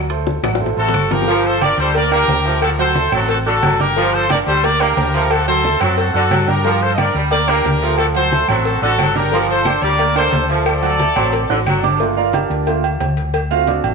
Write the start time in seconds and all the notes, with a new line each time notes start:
Already playing: D2
0.10 A3 A4 C5, high bongo, high conga, high timbale
0.27 high bongo, high conga, low timbale
0.43 A1 F#3 F#4 F#5, high bongo, high conga, low conga, high timbale, claves
0.55 high bongo
0.60 A3 A4 C5, high conga, low conga
0.66 high bongo
0.77 A1 A3 F#4 A4 C5, high conga
0.88 low bongo
0.94 G1, high conga, high timbale, low timbale, claves
1.11 F3 F4 G4 A#4 F5, low bongo, high conga, high timbale
1.22 low bongo
1.28 F3 F4 F5, cowbell, high conga
1.45 A4 C5, high conga
1.61 D4 A#4 D5 D6, cowbell, high conga, low timbale, low agogo, claves
1.77 D2 G3 A4 C5, cowbell, high conga
1.95 A#3 A#4 D5 A#5, cowbell, high conga, low agogo
2.11 A#3 D4 G4 A#4 D5 D6, high conga, low agogo, claves
2.28 D2, cowbell, high conga, low timbale, low agogo
2.45 F3 A3 A4 A5, cowbell, high conga
2.62 F#4 A4, cowbell, high conga, low agogo, claves
2.79 F#3 F#4 A4 C5 F#5, high conga, low agogo
2.95 A3 A4 A5, cowbell, high conga, low timbale
3.12 A1 F#3 C4 F#4 A4 C5 C6, high conga, low conga, low agogo, claves
3.29 F#4 A4, cowbell, high conga, low agogo
3.46 D3 F#4 A4 F#5 F#6, high conga
3.62 G1 F#3, cowbell, high conga, low timbale, low agogo, claves
3.80 D4 G4 A#4 D5 D6, high conga, low agogo
3.96 F3 F4 F5, cowbell, high conga
4.14 A4 C5, high conga
4.30 D4 A#4 D5 D6, cowbell, high conga, low timbale, low agogo, claves
4.46 D2 G3 A4 C5, cowbell, high conga
4.64 A#3 A#4 D5 A#5, cowbell, high conga, low agogo
4.80 A#3 D4 G4 A#4 D5 D6, high conga, low agogo, claves
4.97 D2, cowbell, high conga, low timbale, low agogo
5.14 F3 A3 A4 A5, cowbell, high conga
5.31 F#4 A4, cowbell, low agogo, claves
5.48 F#3 F#4 A4 C5 F#5, high conga, low agogo
5.64 A3 A4 A5, cowbell, high conga, low timbale
5.81 F#2 F#3 C4 F#4 A4 C5 C6, high conga, low conga, low agogo, claves
5.98 F#4 A4, cowbell, high conga, low agogo
6.14 F#2 D3 F#4 A4 F#5 F#6, high conga
6.31 G2 F#3, cowbell, high conga, low timbale, low agogo, claves
6.48 D4 G4 A#4 D5 D6, high conga, low agogo
6.65 F3 F4 F5, cowbell
6.81 A4 C5, high conga
6.94 D4 D5 D#5, high conga, low timbale, low agogo, claves
6.99 A#4 D5 D6, cowbell
7.15 D2 G3, cowbell, high conga
7.31 A#3 A#4 D5 A#5, cowbell, high conga, low agogo
7.48 A#3 D4 G4 A#4 D5 D6, high conga, low agogo, claves
7.65 D2, cowbell, high conga, low timbale, low agogo
7.82 F3 A3 A4 A5, cowbell, high conga
7.98 F#4 A4, cowbell, high conga, low agogo, claves
8.15 F#3 F#4 A4 C5 F#5, high conga, low agogo
8.32 A3 A4 A5, cowbell, high conga, low timbale
8.48 A1 F#3 C4 F#4 A4 C5 C6, high conga, low conga, low agogo, claves
8.65 F#4 A4, cowbell, high conga, low agogo
8.82 A1 D3 F#4 A4 F#5 F#6, high conga
8.98 G1 F#3, cowbell, high conga, low timbale, low agogo, claves
9.15 D4 G4 A#4 D5 D6, high conga, low agogo
9.32 F3 F4 F5, cowbell, high conga
9.49 A4 C5, high conga
9.65 D4 D5 D6, cowbell, high conga, low timbale, low agogo, claves
9.82 D2 G3 A#4 D5, cowbell, high conga
9.99 A#3 A#4 A#5, cowbell, high conga, low agogo
10.16 A#3 D4 A4 C5 D5 D6, high conga, low agogo, claves
10.32 D2, cowbell, high conga, low timbale, low agogo
10.49 F3 A3 A4 A5, cowbell, high conga
10.66 A4 D5, cowbell, high conga, low agogo, claves
10.82 F#3 F#4 F#5, high conga, low agogo
10.99 A3 A4 A5, cowbell, high conga, low timbale
11.16 A1 F#3 C4 C5 C6, high conga, low conga, low agogo, claves
11.33 cowbell, high conga, low agogo
11.49 A1 D3 F#4 F#5 F#6, high conga, high timbale
11.66 G1 F#3, cowbell, high conga, low agogo, claves
11.83 D4 D5 D6, high conga, low timbale, low agogo
11.99 A3 A#3 F4, cowbell, high conga
12.17 F4 A#4 D5 F5, high conga
12.33 D4 G4 A#4 D5, cowbell, high conga, low timbale, low agogo
12.50 D2, cowbell, high conga
12.67 A3 A#3 F4, cowbell, high conga, low agogo
12.84 high conga, low agogo
13.00 D2, cowbell, high conga, low timbale, low agogo
13.17 cowbell, high conga
13.34 cowbell, high conga, low agogo
13.50 A3 C4 F4 F#4 F5, high conga, low agogo
13.67 D4 F#4 A4 D5, cowbell, high conga, low timbale
13.84 A1, high conga, low conga, low agogo